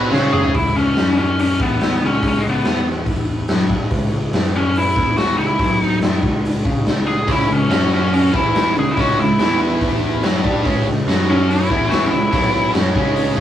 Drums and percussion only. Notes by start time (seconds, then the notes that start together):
0.13 snare
0.33 mid tom
0.44 floor tom
0.54 kick, open hi-hat
0.77 snare
0.96 snare, open hi-hat
1.39 open hi-hat
1.60 kick
1.81 snare, open hi-hat
2.22 kick, open hi-hat
2.64 snare, open hi-hat
3.06 kick, open hi-hat
3.48 snare, open hi-hat
3.70 kick
3.91 kick, open hi-hat
4.33 snare, open hi-hat
4.75 open hi-hat
4.96 kick
5.17 snare, open hi-hat
5.59 kick, open hi-hat
5.81 snare
6.02 snare, open hi-hat
6.23 kick
6.45 open hi-hat
6.65 kick
6.86 snare, open hi-hat
7.28 kick, open hi-hat
7.71 snare, open hi-hat
8.13 open hi-hat
8.34 kick
8.55 snare, open hi-hat
8.97 kick, open hi-hat
9.19 snare
9.39 snare, open hi-hat
9.81 kick, open hi-hat
10.23 snare, open hi-hat
10.45 kick
10.65 kick, open hi-hat
10.89 snare
11.08 snare, open hi-hat
11.50 open hi-hat
11.70 kick
11.91 snare, open hi-hat
12.33 kick, open hi-hat
12.74 snare, open hi-hat
12.95 kick
13.16 open hi-hat